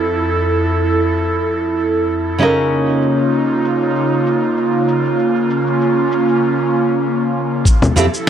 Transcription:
0.00 2.36 F2 medium
0.00 2.35 F3 medium
0.00 2.36 C4 medium
0.00 2.36 E4 medium
0.00 2.37 G4 medium
0.00 2.36 A4 medium
0.00 2.38 A4 medium
0.10 cabasa soft
0.24 cabasa soft
0.55 cabasa medium
0.72 cabasa soft
0.86 cabasa soft
1.17 cabasa medium
1.34 cabasa soft
1.48 cabasa soft
1.65 cabasa soft
1.79 cabasa medium
1.96 cabasa soft
2.10 cabasa soft
2.38 6.41 C#3 medium
2.38 7.62 C#3 medium
2.38 7.62 A#3 medium
2.38 6.42 C#4 medium
2.38 6.42 D#4 medium
2.38 4.85 D#4 medium
2.38 7.62 F4 medium
2.38 6.43 F4 medium
2.43 6.43 A#4 medium
2.72 cabasa soft
2.88 cabasa soft
3.02 cabasa medium
3.19 cabasa soft
3.33 cabasa soft
3.65 cabasa medium
3.82 cabasa soft
3.96 cabasa soft
4.26 cabasa medium
4.43 cabasa soft
4.58 cabasa soft
4.87 7.63 C#4 medium
4.87 cabasa medium
5.05 cabasa soft
5.19 cabasa soft
5.36 cabasa soft
5.50 cabasa medium
5.67 cabasa soft
5.81 cabasa soft
6.12 cabasa medium
6.29 cabasa soft
7.65 8.29 F3 medium
7.65 8.29 E4 medium
7.65 8.29 A4 loud
7.65 kick loud
7.65 cabasa soft
7.82 low conga medium
7.82 cabasa soft
7.96 8.07 F2 medium
7.96 8.04 F3 medium
7.96 8.05 C4 medium
7.96 8.05 E4 medium
7.96 8.05 G4 medium
7.96 8.05 A4 medium
7.96 cabasa medium
8.14 cabasa soft

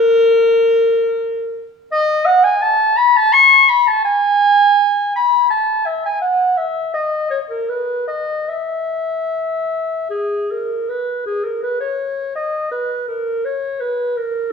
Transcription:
0.00 1.64 A#4 loud
1.92 2.27 D#5 loud
2.26 2.45 F#5 loud
2.44 2.64 G#5 loud
2.62 2.98 A5 loud
2.97 3.18 B5 loud
3.16 3.34 A5 loud
3.33 3.70 C#6 loud
3.69 3.89 B5 loud
3.88 4.04 A5 medium
4.05 5.12 G#5 loud
5.16 5.50 B5 loud
5.50 5.88 A5 medium
5.86 6.03 E5 medium
6.06 6.21 G#5 medium
6.22 6.59 F#5 medium
6.58 6.93 E5 medium
6.94 7.30 D#5 medium
7.30 7.39 C#5 medium
7.50 7.70 A#4 medium
7.69 8.07 B4 medium
8.08 8.50 D#5 medium
8.48 10.10 E5 medium
10.10 10.52 G#4 medium
10.51 10.91 A#4 medium
10.89 11.25 B4 medium
11.26 11.45 G#4 medium
11.44 11.62 A#4 medium
11.63 11.80 B4 medium
11.80 12.34 C#5 medium
12.36 12.71 D#5 medium
12.72 13.07 B4 medium
13.08 13.46 A#4 medium
13.45 13.82 C#5 medium
13.80 14.18 B4 medium
14.17 14.53 A#4 medium

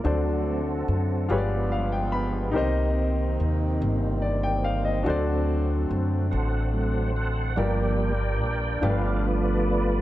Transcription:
0.00 1.26 D3 medium
0.00 1.30 D4 medium
0.04 0.84 D2 medium
0.04 1.26 D3 medium
0.04 1.29 F#3 medium
0.04 0.61 F#3 soft
0.04 1.29 A3 medium
0.04 0.61 A3 soft
0.04 1.29 C4 medium
0.04 1.27 C4 medium
0.04 1.30 F#4 soft
0.04 1.27 F#4 soft
0.04 1.30 A4 soft
0.04 1.27 A4 medium
0.04 1.31 C5 soft
0.04 1.31 D5 medium
0.88 1.27 F#2 medium
1.29 2.56 G1 medium
1.29 2.52 G2 medium
1.29 2.51 F3 soft
1.29 2.54 F3 medium
1.29 2.54 G#3 medium
1.29 2.52 G#3 soft
1.29 2.54 B3 medium
1.29 2.52 B3 medium
1.29 2.55 F4 medium
1.29 2.51 G4 medium
1.29 2.56 G#4 medium
1.29 2.56 B4 medium
1.29 1.38 C#5 medium
1.38 2.59 D5 medium
1.72 1.91 F5 medium
1.92 2.12 G5 medium
2.12 2.52 B5 medium
2.51 3.76 C3 medium
2.51 5.02 D#3 soft
2.51 5.00 D#4 medium
2.51 5.01 G4 medium
2.51 5.02 A#4 medium
2.56 3.35 C2 medium
2.56 5.04 D#3 medium
2.56 5.02 A#3 soft
2.56 5.04 A#3 medium
2.56 7.53 C4 medium
2.56 5.03 D#4 medium
2.56 5.03 C5 medium
2.56 4.20 D#5 medium
3.40 3.78 D#2 medium
3.81 5.03 G1 medium
4.22 4.42 D5 medium
4.43 4.63 G5 medium
4.64 4.84 F5 medium
4.85 5.25 D#5 medium
5.03 5.86 D2 medium
5.03 6.28 D3 medium
5.03 7.55 D3 medium
5.03 6.27 F#3 soft
5.03 7.54 F#3 medium
5.03 6.28 A3 soft
5.03 7.55 A3 medium
5.03 6.28 C4 medium
5.03 7.51 D4 medium
5.03 7.52 F#4 medium
5.03 7.53 A4 medium
5.07 7.54 C5 medium
5.07 7.55 D5 medium
5.91 6.29 F#2 medium
6.31 7.53 A1 medium
6.31 7.53 A4 medium
6.31 7.53 C5 medium
6.31 7.11 F#5 medium
6.74 7.12 F#3 soft
6.74 7.12 A3 soft
6.74 7.12 C4 soft
7.16 7.59 F#5 medium
7.56 8.41 G1 medium
7.56 8.79 G2 medium
7.56 8.12 F3 soft
7.56 10.01 F3 medium
7.56 8.13 G3 soft
7.56 10.01 G3 medium
7.56 8.81 A#3 medium
7.56 8.13 A#3 medium
7.56 8.79 D4 medium
7.56 10.01 D4 medium
7.56 8.80 F4 medium
7.56 8.81 G4 soft
7.56 8.79 A#4 medium
7.56 8.83 A#4 medium
7.56 8.79 D5 medium
7.56 8.83 D5 medium
7.56 8.87 G5 medium
8.41 8.79 A#1 medium
8.81 10.01 G1 medium
8.81 10.01 G2 medium
8.81 10.01 F3 soft
8.81 10.01 A3 soft
8.81 10.01 B3 medium
8.81 10.01 D4 medium
8.81 10.01 F4 medium
8.81 10.01 G4 soft
8.81 8.90 A4 soft
8.81 9.23 B4 medium
8.81 9.24 D5 medium
8.81 10.01 D5 medium
8.81 9.26 F5 medium
8.90 10.01 B4 soft
9.25 10.01 F4 medium
9.25 10.01 B4 medium
9.25 10.01 D5 loud

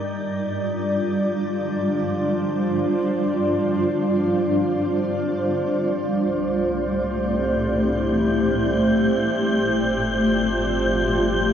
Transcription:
0.00 6.05 G3 medium
0.00 6.04 F4 medium
0.00 11.53 D5 medium
0.00 6.05 G6 medium
0.37 7.36 D4 medium
1.76 11.53 C5 loud
6.04 9.30 C2 medium
6.04 11.53 A3 medium
6.04 11.53 G6 medium
6.26 11.53 G4 medium
6.75 9.33 E4 medium
9.33 11.53 G1 medium
9.62 11.53 F4 medium

